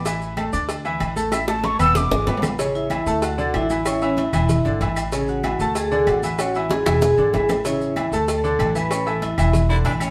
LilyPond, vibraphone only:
\new Staff \with { instrumentName = "Vibraphone" } { \time 4/4 \key a \major \tempo 4 = 190 r1 | r1 | r8 <e' e''>4. <fis' fis''>4 <e' e''>4 | <e' e''>8 <cis' cis''>8 <e' e''>8 <e' e''>2 r8 |
r8 <fis' fis''>4. <gis' gis''>8 <gis' gis''>8 <fis' fis''>4 | <fis' fis''>8 <e' e''>8 <gis' gis''>4 <gis' gis''>4. r8 | <e' e''>4. <a' a''>8 <a' a''>8 <a' a''>8 <a' a''>8 <b' b''>8~ | <b' b''>8 <a' a''>8 <e' e''>8 <e' e''>4 r4. | }